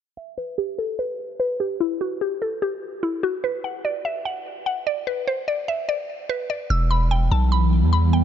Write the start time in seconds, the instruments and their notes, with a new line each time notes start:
0.17 synth pluck E5
0.38 synth pluck B4
0.58 synth pluck G4
0.78 synth pluck A4
0.99 synth pluck B4
1.40 synth pluck B4
1.60 synth pluck G4
1.80 synth pluck E4
2.01 synth pluck F#4
2.21 synth pluck G4
2.42 synth pluck A4
2.62 synth pluck G4
3.03 synth pluck E4
3.23 synth pluck F#4
3.44 synth pluck B4
3.64 synth pluck F#5
3.85 synth pluck D5
4.05 synth pluck E5
4.25 synth pluck F#5
4.66 synth pluck F#5
4.87 synth pluck D5
5.07 synth pluck B4
5.27 synth pluck C5
5.48 synth pluck D5
5.68 synth pluck E5
5.89 synth pluck D5
6.29 synth pluck B4
6.50 synth pluck D5
6.70 808-style bass E1, ambient pad E3 G3 B3 E4, synth pluck E6
6.91 synth pluck B5
7.11 synth pluck G5
7.31 808-style bass B1, synth pluck A5
7.52 synth pluck B5
7.83 808-style bass E2
7.93 synth pluck B5
8.13 synth pluck G5